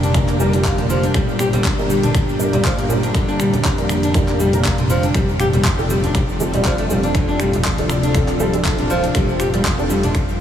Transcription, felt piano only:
0.00 0.12 A#3 medium
0.00 0.12 D4 medium
0.00 0.12 G4 medium
0.00 0.12 A#4 medium
0.15 0.37 A#3 medium
0.15 0.37 D4 medium
0.15 0.37 G4 medium
0.15 0.37 A#4 loud
0.40 0.52 A#3 loud
0.40 0.52 D4 medium
0.40 0.52 G4 medium
0.40 0.52 A#4 loud
0.54 1.75 A#3 medium
0.54 1.75 D4 medium
0.54 1.75 G4 medium
0.54 1.75 A#4 medium
1.79 1.90 A#3 medium
1.79 1.90 D4 medium
1.79 1.90 G4 medium
1.79 1.90 A#4 medium
2.39 2.50 A#3 medium
2.39 2.50 D4 medium
2.39 2.50 G4 medium
2.39 2.50 A#4 medium
2.53 2.87 A#3 medium
2.53 2.87 D4 medium
2.53 2.87 G4 medium
2.53 2.87 D5 medium
2.90 3.75 A#3 medium
2.90 3.75 D4 medium
2.90 3.75 G4 medium
2.90 3.75 A#4 medium
3.78 4.12 A#3 medium
3.78 4.12 D4 medium
3.78 4.12 G4 medium
3.78 4.12 A#4 medium
4.15 4.37 A#3 medium
4.15 4.37 D4 medium
4.15 4.37 G4 medium
4.15 4.37 A#4 loud
4.53 4.73 A#3 medium
4.53 4.73 D4 medium
4.53 4.73 G4 medium
4.53 4.73 A#4 loud
5.79 5.90 C4 medium
5.79 5.90 D4 medium
5.79 5.90 F4 medium
5.79 5.90 A4 medium
6.40 6.50 C4 medium
6.40 6.50 D4 medium
6.40 6.50 F4 medium
6.40 6.50 A4 medium
6.54 6.87 C4 medium
6.54 6.87 D4 medium
6.54 6.87 F4 medium
6.54 6.87 D5 medium
6.90 7.75 C4 medium
6.90 7.75 D4 medium
6.90 7.75 F4 medium
6.90 7.75 A4 medium
7.79 8.12 C4 medium
7.79 8.12 D4 medium
7.79 8.12 F4 medium
7.79 8.12 A4 medium
8.15 8.37 C4 medium
8.15 8.37 D4 medium
8.15 8.37 F4 medium
8.15 8.37 A4 loud
8.40 8.52 C4 loud
8.40 8.52 D4 medium
8.40 8.52 F4 medium
8.40 8.52 A4 loud
8.54 9.75 C4 medium
8.54 9.75 D4 medium
8.54 9.75 F4 medium
8.54 9.75 A4 loud
9.79 9.90 C4 medium
9.79 9.90 D4 medium
9.79 9.90 F4 medium
9.79 9.90 A4 medium

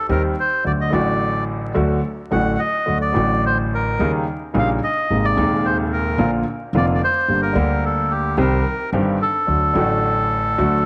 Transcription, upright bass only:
0.09 0.33 D#2 medium
0.65 0.88 D2 soft
0.93 1.72 A1 medium
1.75 1.99 D2 medium
2.32 2.55 A1 medium
2.88 3.11 D2 soft
3.16 3.95 A1 medium
4.00 4.23 D#2 medium
4.55 4.78 A#1 medium
5.10 5.33 G#1 soft
5.37 6.16 D#2 medium
6.18 6.42 A#1 medium
6.73 6.97 F1 medium
7.28 7.52 G1 soft
7.55 8.34 D2 medium
8.38 8.61 C2 medium
8.93 9.16 G1 medium
9.48 9.71 D2 soft
9.75 10.54 A1 medium
10.59 10.82 D2 medium

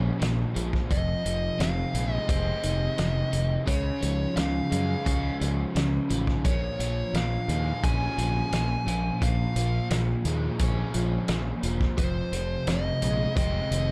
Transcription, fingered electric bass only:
0.22 0.44 A#1 medium
0.56 0.79 A#1 medium
0.91 1.13 F1 loud
1.25 1.48 F1 medium
1.60 1.82 F1 medium
1.94 2.17 A#1 medium
2.29 2.52 F1 medium
2.64 2.87 F1 medium
2.99 3.21 F1 medium
3.33 3.56 F1 medium
3.68 3.90 C#2 medium
4.03 4.25 C#2 medium
4.37 4.59 C#2 medium
4.72 4.94 F#2 medium
5.07 5.29 C#2 medium
5.41 5.64 C#2 medium
5.75 5.98 C#2 medium
6.11 6.33 A1 medium
6.45 6.68 A#1 medium
6.79 7.02 A#1 medium
7.14 7.36 A#1 medium
7.48 7.71 D#2 medium
7.84 8.06 A#1 medium
8.18 8.41 A#1 medium
8.53 8.75 A#1 medium
8.87 9.09 A#1 medium
9.22 9.44 A#1 medium
9.56 9.78 A#1 medium
9.91 10.13 A#1 medium
10.25 10.48 D#2 medium
10.60 10.82 A#1 medium
10.95 11.17 A#1 medium
11.29 11.52 A#1 medium
11.63 11.86 E1 medium
11.98 12.21 F1 medium
12.32 12.55 F1 medium
12.67 12.90 F1 medium
13.02 13.25 A#1 medium
13.36 13.59 F1 medium
13.71 13.91 F1 medium

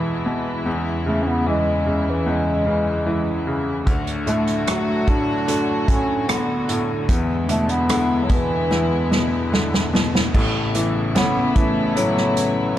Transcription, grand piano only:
0.00 0.62 E2 soft
0.00 0.26 B2 soft
0.00 0.68 E3 soft
0.26 0.65 B2 soft
0.66 2.25 E2 medium
1.06 1.85 C#3 soft
1.46 3.03 E3 soft
1.86 2.65 C#3 soft
2.26 3.83 E2 medium
2.66 3.45 C#3 soft
3.07 3.85 E3 medium
3.47 3.86 C#3 soft
3.87 7.04 D2 medium
4.26 5.06 A2 medium
4.67 6.24 F#3 soft
5.07 5.86 A2 soft
5.47 6.27 D3 medium
5.88 6.67 A2 soft
6.28 7.06 D3 medium
6.69 7.08 A2 soft
7.09 8.69 E2 medium
7.49 8.29 B2 medium
7.89 9.49 D3 medium
8.30 9.10 B2 medium
8.71 10.31 E2 medium
9.11 9.92 B2 soft
9.52 10.32 D3 medium
9.94 10.33 B2 medium
10.35 12.78 A1 medium
10.35 11.14 A2 medium
10.75 11.54 E3 medium
11.15 11.95 A2 medium
11.56 12.75 E3 medium
11.96 12.78 A2 medium

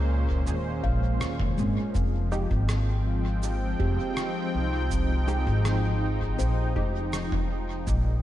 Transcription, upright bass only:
0.00 0.43 C#2 medium
0.47 0.80 D#2 medium
0.84 1.20 A#1 medium
1.21 1.54 D#2 medium
1.58 1.74 G#1 medium
1.95 2.47 F1 medium
2.51 3.77 G#1 loud
3.80 3.97 F1 medium
4.54 5.43 C2 medium
5.47 6.36 G#1 medium
6.39 6.72 A#1 medium
6.76 7.84 F1 medium
7.87 8.22 A#1 medium

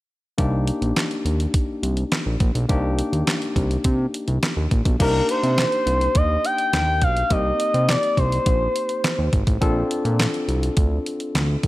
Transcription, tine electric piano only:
0.38 2.65 A#3 medium
0.38 2.65 D4 medium
0.38 2.65 D#4 medium
0.38 2.66 G4 medium
2.69 4.96 A#3 medium
2.69 4.96 D4 medium
2.69 4.96 D#4 medium
2.69 4.97 G4 medium
4.99 7.27 A#3 medium
4.99 7.27 D4 medium
4.99 7.27 D#4 medium
4.99 7.27 G4 medium
7.30 9.57 A#3 medium
7.30 9.57 C4 medium
7.30 9.58 D#4 medium
7.30 9.58 G4 medium
9.61 11.67 C4 medium
9.61 11.67 D4 medium
9.61 11.67 F4 medium
9.61 11.67 A4 medium

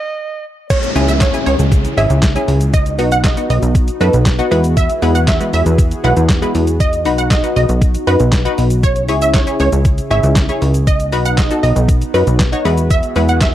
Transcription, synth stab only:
0.96 1.13 C#4 medium
0.96 1.13 E4 medium
0.96 1.13 G#4 loud
1.34 1.63 C#4 medium
1.34 1.63 E4 medium
1.34 1.63 G#4 medium
1.97 2.15 C#4 medium
1.97 2.15 E4 medium
1.97 2.15 G#4 medium
2.36 2.65 C#4 medium
2.36 2.65 E4 medium
2.36 2.65 G#4 loud
2.99 3.16 B3 medium
2.99 3.16 D#4 medium
2.99 3.17 F#4 medium
3.37 3.66 B3 medium
3.37 3.66 D#4 medium
3.37 3.66 F#4 medium
4.01 4.18 B3 medium
4.01 4.18 D#4 medium
4.01 4.18 A4 medium
4.39 4.50 B3 loud
4.39 4.52 D#4 medium
4.39 4.50 F#4 loud
4.51 4.92 G#3 loud
4.51 4.92 B3 medium
4.51 4.92 E4 medium
4.51 4.92 F#4 medium
4.51 4.92 B4 loud
5.02 5.20 G#3 medium
5.02 5.20 B3 medium
5.02 5.20 E4 medium
5.02 5.20 F#4 medium
5.02 5.20 B4 loud
5.40 5.70 G#3 medium
5.40 5.70 B3 medium
5.40 5.70 E4 medium
5.40 5.70 F#4 medium
5.40 5.70 B4 medium
6.04 6.21 G#3 medium
6.04 6.21 B3 medium
6.04 6.21 E4 medium
6.04 6.22 F#4 medium
6.04 6.22 B4 medium
6.42 6.71 G#3 medium
6.42 6.71 B3 medium
6.42 6.71 E4 medium
6.42 6.71 F#4 medium
6.42 6.72 B4 medium
7.05 7.23 D#4 medium
7.05 7.23 F#4 medium
7.05 7.23 B4 medium
7.43 7.73 D#4 medium
7.43 7.73 F#4 medium
7.43 7.73 B4 medium
8.07 8.25 D#4 medium
8.07 8.25 F#4 medium
8.07 8.25 B4 medium
8.45 8.74 D#4 loud
8.45 8.75 F#4 loud
8.45 8.75 B4 loud
9.09 9.26 E4 medium
9.09 9.27 G#4 medium
9.09 9.27 C#5 medium
9.47 9.76 E4 medium
9.47 9.76 G#4 medium
9.47 9.77 C#5 medium
10.11 10.28 E4 medium
10.11 10.28 G#4 medium
10.11 10.28 C#5 medium
10.49 10.78 E4 medium
10.49 10.78 G#4 medium
10.49 10.78 C#5 loud
11.12 11.30 D#4 medium
11.12 11.30 F#4 medium
11.12 11.30 B4 medium
11.51 11.80 D#4 medium
11.51 11.80 F#4 medium
11.51 11.80 A4 medium
12.14 12.32 D#4 medium
12.14 12.32 F#4 medium
12.14 12.32 B4 medium
12.52 12.65 D#4 loud
12.52 12.64 F#4 loud
12.52 12.65 C#5 loud
12.65 13.06 G#3 loud
12.65 13.06 B3 medium
12.65 13.06 E4 medium
12.65 13.06 F#4 medium
12.65 13.06 B4 loud
13.16 13.33 G#3 medium
13.16 13.33 B3 medium
13.16 13.34 E4 medium
13.16 13.34 F#4 medium
13.16 13.34 B4 medium

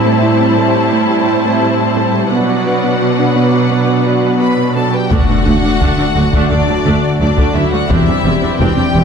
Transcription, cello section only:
0.00 2.33 A2 soft
2.33 4.88 B2 soft
5.11 5.18 D2 medium
5.29 5.36 D2 soft
5.47 5.54 D2 soft
5.64 5.71 D2 soft
5.81 5.88 D2 soft
5.99 6.06 D2 soft
6.16 6.23 D2 soft
6.34 6.41 D2 soft
6.50 6.57 D2 soft
6.68 6.75 D2 soft
6.85 6.92 D2 medium
7.20 7.27 D2 soft
7.37 7.45 D2 medium
7.55 7.62 D2 soft
7.72 7.79 D2 soft
7.89 7.96 E2 medium
8.07 8.14 E2 soft
8.25 8.32 E2 soft
8.43 8.50 E2 soft
8.60 8.67 E2 medium
8.78 8.85 E2 soft
8.95 9.02 E2 soft

